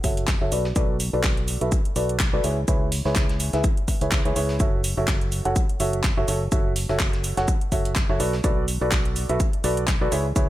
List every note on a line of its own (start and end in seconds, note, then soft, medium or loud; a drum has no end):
0.04 0.39 F#1 medium
0.04 0.23 F#4 medium
0.04 0.23 A4 medium
0.04 0.23 C#5 medium
0.04 0.23 E5 medium
0.04 kick medium
0.04 open hi-hat loud
0.04 shaker medium
0.17 closed hi-hat medium
0.17 closed hi-hat soft
0.27 kick loud
0.27 snare loud
0.27 clap loud
0.27 closed hi-hat medium
0.27 shaker medium
0.41 0.50 F#1 loud
0.41 0.50 F#4 medium
0.41 0.50 A4 medium
0.41 0.50 C#5 medium
0.41 0.50 E5 loud
0.52 0.74 B1 loud
0.52 0.65 F#4 medium
0.52 0.65 A4 medium
0.52 0.65 B4 medium
0.52 0.65 D5 medium
0.52 open hi-hat medium
0.52 shaker medium
0.65 snare medium
0.76 1.11 B1 loud
0.76 0.95 F#4 medium
0.76 0.95 A4 medium
0.76 0.95 B4 medium
0.76 0.95 D5 loud
0.76 kick loud
0.76 closed hi-hat medium
0.76 shaker medium
1.00 open hi-hat loud
1.00 shaker medium
1.13 1.59 B1 loud
1.13 1.58 F#4 medium
1.13 1.58 A4 medium
1.13 1.58 B4 medium
1.13 1.58 D5 medium
1.23 kick loud
1.23 snare loud
1.23 clap loud
1.23 closed hi-hat medium
1.23 shaker medium
1.37 closed hi-hat soft
1.48 open hi-hat medium
1.48 shaker medium
1.61 1.69 B1 medium
1.61 1.72 F#4 medium
1.61 1.72 A4 medium
1.61 1.71 B4 medium
1.61 1.71 E5 medium
1.61 closed hi-hat medium
1.72 kick loud
1.72 closed hi-hat medium
1.72 shaker medium
1.85 closed hi-hat soft
1.96 2.31 B1 medium
1.96 2.15 F#4 medium
1.96 2.15 A4 medium
1.96 2.15 B4 medium
1.96 2.15 D5 loud
1.96 open hi-hat loud
1.96 shaker medium
2.09 closed hi-hat soft
2.19 kick loud
2.19 snare loud
2.19 clap loud
2.19 closed hi-hat medium
2.19 shaker medium
2.33 2.42 B1 loud
2.33 2.42 F#4 medium
2.33 2.42 A4 medium
2.33 2.42 B4 medium
2.33 2.42 D5 loud
2.44 2.66 C#2 loud
2.44 2.57 E4 medium
2.44 2.57 G#4 medium
2.44 2.57 B4 medium
2.44 2.57 C#5 medium
2.44 open hi-hat loud
2.44 shaker medium
2.68 3.03 C#2 medium
2.68 2.87 E4 medium
2.68 2.87 G#4 medium
2.68 2.87 B4 medium
2.68 2.87 C#5 loud
2.68 kick loud
2.68 closed hi-hat medium
2.68 shaker medium
2.92 open hi-hat medium
2.92 open hi-hat loud
3.05 3.51 C#2 medium
3.05 3.50 E4 medium
3.05 3.50 G#4 medium
3.05 3.50 B4 medium
3.05 3.50 C#5 medium
3.05 snare soft
3.15 kick loud
3.15 snare loud
3.15 clap loud
3.15 closed hi-hat medium
3.15 shaker medium
3.29 snare soft
3.29 closed hi-hat soft
3.40 open hi-hat medium
3.40 shaker medium
3.53 3.61 C#2 medium
3.53 3.64 E4 medium
3.53 3.64 G#4 medium
3.53 3.64 B4 medium
3.53 3.64 E5 medium
3.53 snare soft
3.53 closed hi-hat soft
3.64 kick loud
3.64 closed hi-hat medium
3.64 shaker medium
3.77 closed hi-hat soft
3.88 kick medium
3.88 open hi-hat loud
3.88 shaker medium
4.01 4.23 C#2 medium
4.01 4.19 E4 medium
4.01 4.19 G#4 medium
4.01 4.19 B4 medium
4.01 4.19 C#5 medium
4.01 closed hi-hat soft
4.12 kick loud
4.12 snare loud
4.12 clap loud
4.12 closed hi-hat medium
4.12 shaker medium
4.25 4.34 C#2 loud
4.25 4.34 E4 medium
4.25 4.34 G#4 medium
4.25 4.34 B4 medium
4.25 4.34 C#5 loud
4.25 closed hi-hat soft
4.36 4.58 C#2 loud
4.36 4.55 E4 medium
4.36 4.55 G#4 medium
4.36 4.55 B4 medium
4.36 4.55 C#5 loud
4.36 open hi-hat medium
4.36 shaker medium
4.49 snare medium
4.60 4.95 F#1 medium
4.60 4.79 F#4 medium
4.60 4.79 A4 medium
4.60 4.79 C#5 medium
4.60 4.79 E5 loud
4.60 kick loud
4.60 closed hi-hat medium
4.60 shaker medium
4.84 open hi-hat loud
4.84 shaker medium
4.97 5.43 F#1 loud
4.97 5.42 F#4 medium
4.97 5.42 A4 medium
4.97 5.42 C#5 medium
4.97 5.42 E5 medium
5.08 kick loud
5.08 snare loud
5.08 clap loud
5.08 closed hi-hat medium
5.08 shaker medium
5.21 closed hi-hat soft
5.32 open hi-hat medium
5.32 shaker medium
5.45 5.53 F#1 medium
5.45 5.56 F#4 medium
5.45 5.56 A4 medium
5.45 5.56 C#5 medium
5.45 5.56 F#5 medium
5.45 closed hi-hat soft
5.56 kick loud
5.56 closed hi-hat medium
5.56 shaker medium
5.69 closed hi-hat soft
5.80 6.15 F#1 medium
5.80 5.99 F#4 medium
5.80 5.99 A4 medium
5.80 5.99 C#5 medium
5.80 5.99 E5 medium
5.80 open hi-hat loud
5.80 shaker medium
5.93 closed hi-hat medium
6.03 kick loud
6.03 snare loud
6.03 clap loud
6.03 closed hi-hat medium
6.03 shaker medium
6.17 6.26 F#1 loud
6.17 6.26 F#4 medium
6.17 6.26 A4 medium
6.17 6.26 C#5 medium
6.17 6.26 E5 loud
6.28 6.50 F#1 loud
6.28 6.41 F#4 medium
6.28 6.41 A4 medium
6.28 6.41 C#5 medium
6.28 6.41 E5 medium
6.28 open hi-hat medium
6.28 shaker medium
6.52 6.71 F#4 loud
6.52 6.71 A4 medium
6.52 6.71 C#5 medium
6.52 6.71 E5 loud
6.52 kick loud
6.52 closed hi-hat medium
6.52 shaker medium
6.76 open hi-hat medium
6.76 open hi-hat loud
6.89 7.35 F#1 medium
6.89 7.34 F#4 medium
6.89 7.34 A4 medium
6.89 7.34 C#5 medium
6.89 7.34 E5 medium
6.89 snare soft
6.99 kick loud
6.99 snare loud
6.99 clap loud
6.99 closed hi-hat medium
6.99 shaker medium
7.13 snare soft
7.13 closed hi-hat soft
7.24 open hi-hat medium
7.24 shaker medium
7.37 7.45 F#1 medium
7.37 7.48 F#4 medium
7.37 7.48 A4 medium
7.37 7.48 C#5 medium
7.37 7.48 F#5 medium
7.37 snare soft
7.37 closed hi-hat medium
7.48 kick loud
7.48 closed hi-hat medium
7.48 shaker medium
7.61 closed hi-hat soft
7.72 8.07 F#1 loud
7.72 7.91 F#4 medium
7.72 7.91 A4 medium
7.72 7.91 C#5 medium
7.72 7.91 E5 loud
7.72 kick medium
7.72 open hi-hat medium
7.72 shaker medium
7.85 closed hi-hat soft
7.95 kick loud
7.95 snare loud
7.95 clap loud
7.95 closed hi-hat medium
7.95 shaker medium
8.09 8.18 F#1 loud
8.09 8.18 F#4 medium
8.09 8.18 A4 medium
8.09 8.18 C#5 medium
8.09 8.18 E5 loud
8.20 8.42 B1 loud
8.20 8.33 F#4 medium
8.20 8.33 A4 medium
8.20 8.33 B4 medium
8.20 8.33 D5 medium
8.20 open hi-hat medium
8.20 shaker medium
8.33 snare medium
8.44 8.79 B1 loud
8.44 8.63 F#4 medium
8.44 8.63 A4 medium
8.44 8.63 B4 medium
8.44 8.63 D5 loud
8.44 kick loud
8.44 closed hi-hat medium
8.44 shaker medium
8.68 open hi-hat loud
8.68 shaker medium
8.81 9.27 B1 loud
8.81 9.26 F#4 medium
8.81 9.26 A4 medium
8.81 9.26 B4 medium
8.81 9.26 D5 medium
8.91 kick loud
8.91 snare loud
8.91 clap loud
8.91 closed hi-hat medium
8.91 shaker medium
9.05 closed hi-hat soft
9.16 open hi-hat medium
9.16 shaker medium
9.29 9.37 B1 medium
9.29 9.40 F#4 medium
9.29 9.40 A4 medium
9.29 9.40 B4 medium
9.29 9.40 E5 medium
9.29 closed hi-hat medium
9.40 kick loud
9.40 closed hi-hat medium
9.40 shaker medium
9.53 closed hi-hat soft
9.64 9.99 B1 medium
9.64 9.83 F#4 medium
9.64 9.83 A4 medium
9.64 9.83 B4 medium
9.64 9.83 D5 medium
9.64 open hi-hat loud
9.64 shaker medium
9.77 closed hi-hat medium
9.87 kick loud
9.87 snare loud
9.87 clap loud
9.87 closed hi-hat medium
9.87 shaker medium
10.01 10.10 B1 loud
10.01 10.10 F#4 medium
10.01 10.10 A4 medium
10.01 10.10 B4 medium
10.01 10.10 D5 loud
10.12 10.34 C#2 loud
10.12 10.25 E4 medium
10.12 10.25 G#4 medium
10.12 10.25 B4 medium
10.12 10.25 C#5 medium
10.12 open hi-hat medium
10.12 shaker medium
10.36 10.49 C#2 loud
10.36 10.49 E4 medium
10.36 10.49 G#4 medium
10.36 10.49 B4 medium
10.36 10.49 C#5 loud
10.36 kick loud
10.36 closed hi-hat medium
10.36 shaker medium